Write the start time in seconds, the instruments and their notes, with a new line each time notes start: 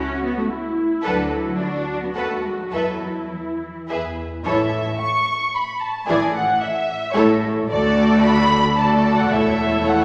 Already playing: cello section C#4, viola section F#4
0.24 cello section B3
0.38 cello section A3
0.51 viola section E4
1.04 double bass section D2, cello section F#3, viola section D4, violin section A4 B4 F#5
1.34 viola section E4
1.60 cello section D4, viola section F#4
2.02 cello section B3
2.15 double bass section D#2, cello section A3, viola section F#4, violin section A4 B4 F#5
2.44 cello section G#3
2.60 cello section F#3
2.73 double bass section E2, cello section F#3, viola section E4, violin section A4 B4 E5
3.25 cello section F#3
3.32 cello section E3
3.89 double bass section E2, violin section G#4 B4 E5
4.46 double bass section A1, cello section A2, viola section E3 E4, violin section A4 C#5 E5
5.00 violin section C#6
5.55 violin section B5
5.81 violin section A5
6.08 double bass section A1, cello section A2, viola section E3 E4, violin section G#4 D5 G#5
6.35 violin section F#5
6.62 violin section E5
7.15 double bass section A1, cello section A2, viola section A3 E4, violin section A4 C#5
7.70 cello section D2, double bass section D2, viola section A3 F#4, violin section A4 D5
8.23 violin section B5
8.77 viola section A3 F#4, violin section A4 D5 A5
9.18 violin section F#5
9.32 double bass section E1, cello section E2, viola section A3 E4, violin section A4 C#5 E5
9.88 violin section F#5